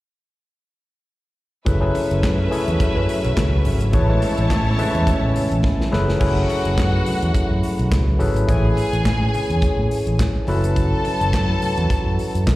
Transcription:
1.65 fingered electric bass F#1, tine electric piano F#3 C#4 E4 G#4 A4 B4, french horn section F#3 A3 E4 F#4 B4, string section C#4 B4 E5, kick, closed hi-hat
1.80 tine electric piano F#3 C#4 E4 G#4 A4 B4
1.95 open hi-hat, muted conga
2.11 fingered electric bass F#1, closed hi-hat
2.23 fingered electric bass F#2, kick, snare, clap, closed hi-hat, high conga
2.51 tine electric piano F#3 C#4 E4 G#4 A4 C#5, open hi-hat, muted conga, low conga
2.68 fingered electric bass E2, closed hi-hat
2.80 muted fingered electric bass stroke, kick, closed hi-hat, muted conga
2.96 fingered electric bass F#2
3.09 open hi-hat
3.25 fingered electric bass B1, closed hi-hat
3.37 fingered electric bass C#2, kick, snare, clap, closed hi-hat, high conga
3.65 fingered electric bass G#1, open hi-hat, high conga
3.81 closed hi-hat
3.93 fingered electric bass A1, french horn section E3 B3 C#4, tine electric piano A3 E4 G#4 B4 C#5, string section E4 C#5 A5, kick, closed hi-hat
4.09 tine electric piano G#3 A3 E4 B4 C#5
4.22 open hi-hat, muted conga
4.38 fingered electric bass A1, closed hi-hat
4.50 fingered electric bass A2, kick, snare, clap, closed hi-hat, high conga
4.78 tine electric piano G#3 A3 E4 B4 E5, open hi-hat, muted conga, low conga
4.95 fingered electric bass E2, closed hi-hat
5.07 muted fingered electric bass stroke, kick, closed hi-hat, muted conga
5.23 fingered electric bass A2
5.36 open hi-hat, low conga
5.52 fingered electric bass A1, closed hi-hat
5.64 kick, snare, high conga
5.81 snare
5.91 fingered electric bass F#1, tine electric piano F#3 C#4 E4 G#4 A4 B4, french horn section F#3 E4 G#4 A4 B4, snare, high conga
6.09 snare
6.19 fingered electric bass F#1, tine electric piano F#3 C#4 E4 G#4 A4 B4, french horn section F#3 A3 E4 F#4 B4, string section F#4 F#5, kick, crash
6.50 open hi-hat, muted conga
6.65 fingered electric bass F#1, closed hi-hat
6.78 fingered electric bass F#2, kick, snare, clap, closed hi-hat, high conga
7.06 open hi-hat, muted conga, low conga
7.23 fingered electric bass E2, closed hi-hat
7.34 kick, closed hi-hat, muted conga
7.51 fingered electric bass F#2
7.63 open hi-hat
7.79 fingered electric bass B1, closed hi-hat
7.92 fingered electric bass C#2, kick, snare, clap, closed hi-hat, high conga
8.19 fingered electric bass G#1, tine electric piano F#3 C#4 E4 G#4 A4 B4, open hi-hat, high conga
8.36 closed hi-hat
8.47 fingered electric bass A1, tine electric piano A3 E4 G#4 B4 C#5, french horn section A3 C#4 G#4, string section G#4 G#5, kick, closed hi-hat
8.77 open hi-hat, muted conga
8.93 fingered electric bass A1, closed hi-hat
9.05 fingered electric bass A2, kick, snare, clap, closed hi-hat, high conga
9.34 open hi-hat, low conga
9.50 fingered electric bass E2, closed hi-hat
9.62 kick, closed hi-hat, muted conga
9.78 fingered electric bass A2
9.91 open hi-hat
10.07 fingered electric bass A1, closed hi-hat
10.19 kick, snare, clap, closed hi-hat, high conga
10.47 fingered electric bass F#1, tine electric piano F#3 C#4 E4 F#4 A4 B4, french horn section F#3 E4 F#4 A4 B4, string section A4 A5, open hi-hat, high conga
10.64 closed hi-hat
10.76 kick, closed hi-hat
11.05 open hi-hat, muted conga
11.21 fingered electric bass F#1, closed hi-hat
11.33 fingered electric bass F#2, kick, snare, clap, closed hi-hat, high conga
11.62 open hi-hat, muted conga, low conga
11.78 fingered electric bass E2, closed hi-hat
11.90 kick, closed hi-hat, muted conga
12.06 fingered electric bass F#2
12.19 open hi-hat
12.35 fingered electric bass F#2, closed hi-hat
12.47 fingered electric bass B1, kick, snare, clap, closed hi-hat, high conga

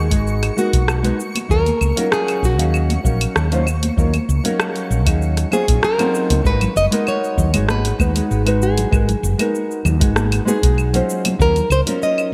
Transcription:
Already playing: fretless electric bass D#2, nylon-string guitar G#4, synth texture C#6
0.10 fretless electric bass G#1, nylon-string guitar G#3 B3 D#4 F#4 G#4, kick, open hi-hat, shaker
0.27 shaker
0.43 cross-stick, open hi-hat, claves
0.56 nylon-string guitar G#3 B3 D#4 F#4 A#4, muted conga, shaker
0.73 fretless electric bass B1, kick, open hi-hat, shaker
0.88 cross-stick, claves, shaker
1.03 nylon-string guitar G#3 B3 D#4 F#4 B4, open hi-hat, muted conga, shaker
1.20 shaker
1.35 open hi-hat, muted conga, claves, shaker
1.49 fretless electric bass D#2, nylon-string guitar F#3 C#4 D#4 F4 A#4, kick, shaker
1.66 open hi-hat, high conga, shaker
1.81 fretless electric bass C#2, claves, shaker
1.96 nylon-string guitar F#3 C#4 D#4 F4 A#4, open hi-hat, muted conga, low conga, shaker
2.12 nylon-string guitar G#4, cross-stick, shaker
2.28 open hi-hat, claves, shaker
2.43 fretless electric bass A#1, nylon-string guitar F#4, kick, shaker
2.58 fretless electric bass D#2, nylon-string guitar F#3 C#4 D#4 G#4 F5, open hi-hat, shaker
2.74 claves, shaker
2.90 open hi-hat, muted conga
3.04 fretless electric bass A#1, nylon-string guitar F#3 C#4 D#4 A#4 F5, kick, shaker
3.21 open hi-hat, claves, shaker
3.36 fretless electric bass D#2, cross-stick, shaker
3.51 nylon-string guitar F#3 C#4 D#4 F4 C5, open hi-hat, high conga, shaker
3.67 claves, shaker
3.83 open hi-hat, high conga, shaker
3.96 fretless electric bass D#2, nylon-string guitar F#3 C#4 D#4 F4 A#4, kick, shaker
4.14 open hi-hat, high conga, claves, shaker
4.29 fretless electric bass C#2, shaker
4.44 nylon-string guitar F#3 C#4 D#4 A#4 F5, open hi-hat, muted conga, low conga, shaker
4.60 cross-stick, claves, shaker
4.76 open hi-hat, shaker
4.91 fretless electric bass A#1, shaker
5.06 fretless electric bass D#2, nylon-string guitar F#3 C#4 D#4 G#4 F5, kick, open hi-hat, claves, shaker
5.22 shaker
5.37 cross-stick, open hi-hat, shaker
5.51 nylon-string guitar F#3 C#4 D#4 F4 G#4 C5, muted conga, claves, shaker
5.68 fretless electric bass A#1, nylon-string guitar F#3 C#4 D#4 F4 G#4, kick, open hi-hat, shaker
5.83 nylon-string guitar A#4, cross-stick, shaker
5.98 nylon-string guitar F#3 C4 C#4 D#4 F4, open hi-hat, muted conga, claves, shaker
6.15 shaker
6.30 fretless electric bass C#2, open hi-hat, muted conga, shaker
6.44 fretless electric bass G#1, nylon-string guitar G#3 B3 D#4 F#4 A#4 B4, kick, shaker
6.61 open hi-hat, low conga, claves, shaker
6.76 fretless electric bass F#1, nylon-string guitar D#5, shaker
6.91 nylon-string guitar G#3 B3 D#4 F#4 A#4, open hi-hat, muted conga, shaker
7.07 nylon-string guitar C#5, claves, shaker
7.24 shaker
7.38 fretless electric bass D#2, kick, low conga, shaker
7.53 fretless electric bass G#1, nylon-string guitar G#3 B3 D#4 F#4 G#4, open hi-hat, claves, shaker
7.69 nylon-string guitar B4, cross-stick, high conga, shaker
7.85 open hi-hat, muted conga
7.99 fretless electric bass D#2, nylon-string guitar G#3 B3 D#4 F#4 B4, kick, high conga, claves, shaker
8.14 nylon-string guitar G#3 B3 D#4 F#4 G#4, open hi-hat, shaker
8.31 fretless electric bass G#1, shaker
8.45 nylon-string guitar G#3 B3 D#4 F#4 B4, open hi-hat, claves, shaker
8.62 nylon-string guitar G#4, shaker
8.78 open hi-hat, low conga, shaker
8.91 fretless electric bass G#1, nylon-string guitar G#3 B3 D#4 F#4 A#4, kick, claves, shaker
9.09 open hi-hat, low conga, shaker
9.23 fretless electric bass F#1, shaker
9.38 nylon-string guitar G#3 B3 D#4 F#4 A#4, open hi-hat, muted conga, claves, shaker
9.55 shaker
9.71 shaker
9.85 fretless electric bass D#2, low conga, claves, shaker
10.00 fretless electric bass G#1, nylon-string guitar G#3 B3 D#4 F#4 G#4, kick, open hi-hat, shaker
10.16 cross-stick, high conga, shaker
10.32 open hi-hat, claves, shaker
10.45 nylon-string guitar G#3 B3 D#4 F#4 G#4 B4, muted conga, high conga, shaker
10.61 fretless electric bass B1, nylon-string guitar G#3 B3 D#4 F#4 G#4, kick, open hi-hat, shaker
10.78 claves, shaker
10.93 nylon-string guitar F#3 C#4 D#4 F4 C5, open hi-hat, muted conga, shaker
11.10 shaker
11.25 open hi-hat, muted conga, low conga, claves, shaker
11.39 fretless electric bass D#2, nylon-string guitar F#3 C#4 D#4 F4 A#4, kick, shaker
11.56 open hi-hat, low conga, shaker
11.70 fretless electric bass C#2, nylon-string guitar C5, claves, shaker
11.86 nylon-string guitar F#3 C#4 D#4 F4 A#4, open hi-hat, muted conga, shaker
12.03 nylon-string guitar D#5, shaker
12.18 claves, shaker

